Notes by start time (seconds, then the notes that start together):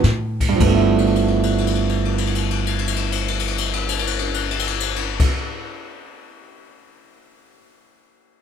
0.03 A2, snare, hi-hat pedal
0.41 kick, crash
0.49 G2
0.55 F3
0.60 G1 A3 B4, kick, crash
0.67 B3
0.74 E4
0.98 crash
1.07 ride
1.16 crash
1.28 ride
1.43 crash
1.58 ride
1.67 crash
1.75 ride
1.89 crash
2.05 ride
2.18 crash
2.27 ride
2.35 crash
2.51 ride
2.67 crash
2.79 ride
2.87 crash
2.96 ride
3.12 crash
3.28 ride
3.39 crash
3.48 ride
3.58 crash
3.73 ride
3.89 crash
3.99 ride
4.07 crash
4.19 ride
4.34 crash
4.51 ride
4.59 crash
4.67 ride
4.80 crash
4.96 ride
5.20 kick, crash